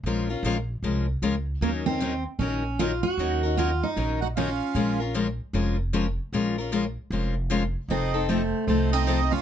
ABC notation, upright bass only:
X:1
M:4/4
L:1/8
Q:"Swing" 1/4=153
K:Bbm
V:1 name="Upright bass" clef=bass
B,,,2 B,,,2 C,,2 D,,2 | E,,4 B,,,4 | E,,4 B,,,4 | B,,,4 F,,,4 |
B,,,4 F,,,4 | F,,,4 C,,4 |]